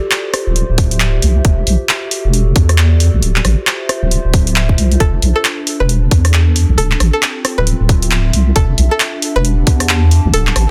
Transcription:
Already playing: F4 G4 A4 C5 D5
0.11 clap, closed hi-hat
0.34 cross-stick, open hi-hat
0.42 E5
0.47 D1
0.56 closed hi-hat
0.69 D1
0.78 kick, open hi-hat
0.91 closed hi-hat
1.00 clap, closed hi-hat
1.22 C2, open hi-hat
1.45 E1 F#4, kick, closed hi-hat
1.67 B1, open hi-hat
1.82 A4
1.89 clap, closed hi-hat
2.11 open hi-hat
2.25 E1 D5
2.33 closed hi-hat
2.56 E2, kick, open hi-hat
2.69 cross-stick, closed hi-hat
2.78 clap, closed hi-hat
3.00 open hi-hat
3.13 B1
3.22 D1 F4, closed hi-hat
3.34 C5, clap
3.43 A1 E5, cross-stick, open hi-hat
3.67 clap, closed hi-hat
3.89 cross-stick, open hi-hat
4.02 D1
4.11 closed hi-hat
4.25 D1
4.34 kick, open hi-hat
4.47 closed hi-hat
4.56 clap, closed hi-hat
4.69 kick
4.78 C2, open hi-hat
4.92 closed hi-hat
5.00 E1 D4 A4, kick, closed hi-hat
5.22 B1, open hi-hat
5.36 A4
5.45 clap, closed hi-hat
5.58 A4
5.67 open hi-hat
5.80 E1 B4
5.89 closed hi-hat
6.11 E2, kick, open hi-hat
6.25 cross-stick, closed hi-hat
6.34 clap, closed hi-hat
6.56 open hi-hat
6.69 B1
6.78 D1 C4 A4, closed hi-hat
6.91 clap
7.00 A1, cross-stick, open hi-hat
7.08 F4
7.13 A4
7.23 clap, closed hi-hat
7.45 cross-stick, open hi-hat
7.58 D1 B4 E5
7.67 closed hi-hat
7.80 D1
7.89 kick, open hi-hat
8.02 closed hi-hat
8.11 clap, closed hi-hat
8.33 C2, open hi-hat
8.56 E1 D4 A4, kick, closed hi-hat
8.73 G4
8.78 B1, open hi-hat
8.91 A4
9.00 clap, closed hi-hat
9.13 F#5
9.22 open hi-hat
9.36 E1 B4 A5
9.45 closed hi-hat
9.67 E2, kick, open hi-hat
9.80 cross-stick, closed hi-hat
9.89 clap, closed hi-hat
10.11 open hi-hat
10.25 B1
10.34 D1 C4 A4, closed hi-hat
10.47 clap
10.55 A1 E4, cross-stick, open hi-hat

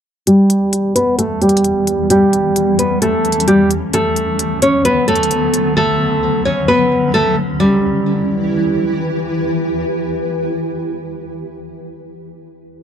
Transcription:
0.27 E2 E3 G3 B3 G4, closed hi-hat
0.50 closed hi-hat
0.73 closed hi-hat
0.95 B3 B4, closed hi-hat
1.18 A3 A4, closed hi-hat
1.41 G3 G4, closed hi-hat
1.49 closed hi-hat
1.57 closed hi-hat
1.64 closed hi-hat
1.87 closed hi-hat
2.10 G3 C#4 G4, closed hi-hat
2.33 closed hi-hat
2.56 closed hi-hat
2.79 B3 B4, closed hi-hat
3.02 A3 A4, closed hi-hat
3.25 closed hi-hat
3.32 closed hi-hat
3.40 closed hi-hat
3.48 G3 G4, closed hi-hat
3.71 closed hi-hat
3.93 D2 D3 F#3 A3 B3 A4, closed hi-hat
4.16 closed hi-hat
4.39 closed hi-hat
4.62 C#4 C#5, closed hi-hat
4.85 B3 B4, closed hi-hat
5.08 A3 A4, closed hi-hat
5.16 closed hi-hat
5.23 closed hi-hat
5.31 closed hi-hat
5.54 closed hi-hat
5.77 A3 C#4 A4
6.45 C#4 C#5
6.68 B3 B4
7.14 A3 A4
7.60 E3 G3 E4 G4 B4

